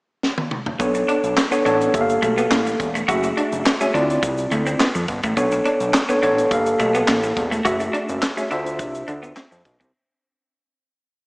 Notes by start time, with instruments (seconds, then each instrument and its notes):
0.23 snare
0.38 high tom
0.51 mid tom
0.66 floor tom
0.79 analog synth bass B1, tine electric piano B3 D4 A4 C#5, clean electric guitar B3, kick, closed hi-hat, shaker
0.94 muted clean electric guitar stroke, closed hi-hat, shaker
1.08 clean electric guitar D4, closed hi-hat
1.24 analog synth bass B1, closed hi-hat, shaker
1.37 muted clean electric guitar stroke, snare, clap, shaker
1.51 tine electric piano B3 D4 A4 C#5, clean electric guitar B3, closed hi-hat, shaker
1.65 analog synth bass A1, tine electric piano B3 D4 A4 C#5, clean electric guitar D4, closed hi-hat
1.81 closed hi-hat, shaker
1.94 analog synth bass G1, tine electric piano A#3 G4 A4 E5, muted clean electric guitar stroke, kick, closed hi-hat, shaker
2.01 tine electric piano F5
2.09 closed hi-hat, shaker
2.22 analog synth bass B1, clean electric guitar A3, kick, closed hi-hat, shaker
2.38 clean electric guitar B3, closed hi-hat, shaker
2.51 analog synth bass A1, clean electric guitar A#3, snare, clap, shaker
2.67 muted clean electric guitar stroke, closed hi-hat, shaker
2.80 analog synth bass E1, kick, closed hi-hat
2.95 clean electric guitar A3, closed hi-hat, shaker
3.08 analog synth bass F#1, tine electric piano A3 F#4 G#4 E5, clean electric guitar F#4, kick, closed hi-hat, shaker
3.23 muted clean electric guitar stroke, closed hi-hat, shaker
3.37 clean electric guitar D4, closed hi-hat
3.52 analog synth bass F#1, closed hi-hat, shaker
3.66 muted clean electric guitar stroke, snare, clap, shaker
3.81 tine electric piano A3 F#4 G#4 E5, clean electric guitar C#4, closed hi-hat, shaker
3.94 analog synth bass D2, tine electric piano C4 E4 F4 D5, clean electric guitar D4, closed hi-hat
4.10 closed hi-hat, shaker
4.23 analog synth bass C2, muted clean electric guitar stroke, kick, closed hi-hat, shaker
4.38 closed hi-hat, shaker
4.51 analog synth bass D2, clean electric guitar A3, closed hi-hat, shaker
4.66 clean electric guitar C4, closed hi-hat, shaker
4.80 clean electric guitar B3, snare, clap, shaker
4.95 analog synth bass F2, muted clean electric guitar stroke, closed hi-hat, shaker
5.08 analog synth bass G1, kick, closed hi-hat
5.23 analog synth bass A1, clean electric guitar A3, kick, closed hi-hat, shaker
5.36 analog synth bass B1, tine electric piano B3 D4 A4 C#5, clean electric guitar B3, kick, closed hi-hat, shaker
5.51 muted clean electric guitar stroke, closed hi-hat, shaker
5.65 clean electric guitar D4, closed hi-hat
5.80 analog synth bass B1, closed hi-hat, shaker
5.94 muted clean electric guitar stroke, snare, clap, shaker
6.09 clean electric guitar B3, tine electric piano B3 D4 A4 C#5, closed hi-hat, shaker
6.22 analog synth bass A1, tine electric piano B3 D4 A4 C#5, clean electric guitar D4, closed hi-hat
6.38 closed hi-hat, shaker
6.51 analog synth bass G1, tine electric piano A#3 G4 A4 F5, muted clean electric guitar stroke, kick, closed hi-hat, shaker
6.66 closed hi-hat, shaker
6.80 analog synth bass B1, clean electric guitar A3, kick, closed hi-hat, shaker
6.95 clean electric guitar B3, closed hi-hat, shaker
7.08 analog synth bass A1, clean electric guitar A#3, snare, clap, shaker
7.23 muted clean electric guitar stroke, closed hi-hat, shaker
7.37 analog synth bass E1, kick, closed hi-hat
7.51 clean electric guitar A3, closed hi-hat, shaker
7.65 analog synth bass F#1, tine electric piano A3 F#4 G#4 E5, clean electric guitar F#4, kick, closed hi-hat, shaker
7.80 muted clean electric guitar stroke, closed hi-hat, shaker
7.93 clean electric guitar D4, closed hi-hat
8.09 analog synth bass F#1, closed hi-hat, shaker
8.22 muted clean electric guitar stroke, snare, clap, shaker
8.37 tine electric piano A3 F#4 G#4 E5, clean electric guitar C#4, closed hi-hat, shaker
8.51 analog synth bass D2, tine electric piano D4 F4 C5 E5, clean electric guitar D4, closed hi-hat
8.66 closed hi-hat, shaker
8.79 analog synth bass C2, muted clean electric guitar stroke, kick, closed hi-hat, shaker
8.95 closed hi-hat, shaker
9.08 analog synth bass D2, clean electric guitar D4, closed hi-hat, shaker
9.23 clean electric guitar B3, closed hi-hat, shaker
9.36 clean electric guitar C4, snare, clap, shaker
9.51 analog synth bass F2, muted clean electric guitar stroke, closed hi-hat, shaker
9.65 analog synth bass B1, kick, closed hi-hat
9.80 analog synth bass C2, clean electric guitar C4, kick, closed hi-hat, shaker